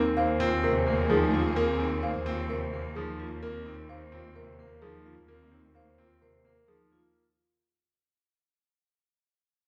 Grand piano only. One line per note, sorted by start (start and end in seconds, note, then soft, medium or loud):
0.00 0.24 C4 medium
0.17 0.48 A#3 medium
0.40 0.71 C4 loud
0.63 0.94 C3 loud
0.87 1.17 A#3 medium
1.10 1.40 F3 loud
1.33 1.55 A#3 medium
1.56 1.87 A#3 loud
1.79 2.10 C4 medium
2.03 2.34 A#3 medium
2.26 2.57 C4 loud
2.50 2.80 C3 medium
2.73 3.03 A#3 medium
2.96 3.27 F3 loud
3.19 3.41 A#3 medium
3.43 3.73 A#3 loud
3.66 3.96 C4 medium
3.89 4.20 A#3 medium
4.12 4.43 C4 loud
4.36 4.66 C3 medium
4.59 4.89 A#3 medium
4.82 5.13 F3 loud
5.05 5.27 A#3 medium
5.28 5.59 A#3 medium
5.51 5.82 C4 medium
5.75 6.05 A#3 medium
5.98 6.29 C4 medium
6.21 6.52 C3 medium
6.45 6.75 A#3 medium
6.68 6.99 F3 medium
6.92 7.22 A#3 medium